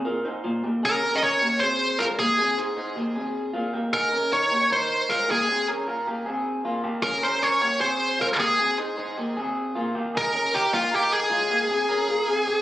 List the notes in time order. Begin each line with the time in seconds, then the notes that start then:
0.05 F4 A#4
0.25 D#4 C5
0.44 A#3 F4
0.63 A#3 G4
0.83 C#4 G#4 A#4
1.03 C#4 A#4
1.16 D#5
1.22 C#4 A#4 C#5
1.41 A#3 G4
1.60 C4 G#4 C5
1.99 G#3 F4 A#4
2.19 A#3 G4 G#4
2.39 C4 G#4
2.58 D#4 C5
2.77 D#4 C5
2.96 A#3 G4
3.15 C4 G#4
3.53 A#3 F4
3.73 A#3 G4
3.93 D#4 G#4 A#4
4.12 C#4 A#4
4.32 D#4 A#4 C#5
4.51 A#3 G4
4.70 D#4 A#4 C5
5.09 G#3 F4 A#4
5.29 A#3 G4 G#4
5.48 C4 G#4
5.68 C#4 A#4
5.87 F4 A#4
6.07 A#3 G4
6.26 C4 G#4
6.65 A#3 F4
6.84 A#3 G4
7.03 C#4 G#4 A#4
7.22 C#4 A#4 C5
7.42 C#4 A#4 C#5
7.61 A#3 G4 C#5
7.80 C4 G#4 C5
8.19 G#3 F4 A#4
8.38 A#3 G4 G#4
8.58 C4 G#4
8.78 D#4 C5
8.98 D#4 C5
9.18 A#3 G4
9.37 C4 G#4
9.75 A#3 F4
9.95 A#3 G4
10.15 D#4 G#4 A#4
10.33 C#4 A#4
10.53 D#4 G4 A#4
10.73 A#3 F4 G4
10.91 D#4 G4 A#4
11.13 G#4
11.30 G#3 F4
11.50 A#3 G4
11.69 C4 G#4
11.89 C#4 A#4
12.08 F4 A#4
12.28 C4 G#4
12.47 C4 G4